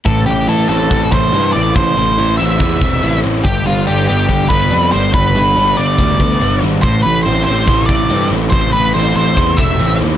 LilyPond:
<<
  \new Staff \with { instrumentName = "Lead electric guitar" } { \time 4/4 \key a \minor \tempo 4 = 142 a'8 g'8 a'8 a'4 c''4 d''8 | c''4. e''2 r8 | g'8 f'8 g'8 g'4 b'4 c''8 | b'4. d''2 r8 |
c''8 b'8 c''8 c''4 d''4 r8 | c''8 b'8 c''8 c''4 e''4 r8 | }
  \new Staff \with { instrumentName = "Overdriven electric guitar" } { \clef bass \time 4/4 \key a \minor a,8 e8 e'8 c'8 e8 c'8 e'8 e8 | a,8 e8 e'8 c'8 e8 c'8 e'8 e8 | g,8 g8 d'8 b8 g8 b8 d'8 g8 | g,8 g8 d'8 b8 g8 b8 d'8 g8 |
a,8 e8 c'8 a8 e8 a8 c'8 e8 | a,8 e8 c'8 a8 e8 a8 c'8 e8 | }
  \new Staff \with { instrumentName = "Picked electric bass" } { \clef bass \time 4/4 \key a \minor a,,8 a,,8 a,,8 a,,8 a,,8 a,,8 g,8 a,,8 | a,,8 a,,8 a,,8 a,,8 e,8 e,,8 a,,8 a,,8 | g,,8 g,,8 g,,8 g,,8 g,,8 g,,8 f,8 g,,8 | g,,8 g,,8 g,,8 g,,8 d,8 d,8 g,,8 gis,,8 |
a,,8 a,,8 a,,8 a,,8 a,,8 a,,8 g,8 a,,8 | a,,8 a,,8 a,,8 a,,8 e,8 e,,8 a,,8 dis,8 | }
  \new DrumStaff \with { instrumentName = "Drums" } \drummode { \time 4/4 <hh bd>8 hh8 hh8 hh8 <hh bd>8 <hh bd>8 hh8 hh8 | <hh bd>8 hh8 hh8 hh8 <hh bd>8 <hh bd>8 hh8 hh8 | <hh bd>8 hh8 hh8 hh8 <hh bd>8 <hh bd>8 hh8 hh8 | <hh bd>8 hh8 hh8 hh8 <hh bd>8 <hh bd>8 hh8 hh8 |
<hh bd>8 hh8 hh8 hh8 <hh bd>8 <hh bd>8 hh8 hh8 | <hh bd>8 hh8 hh8 hh8 <hh bd>8 <hh bd>8 hh8 hh8 | }
>>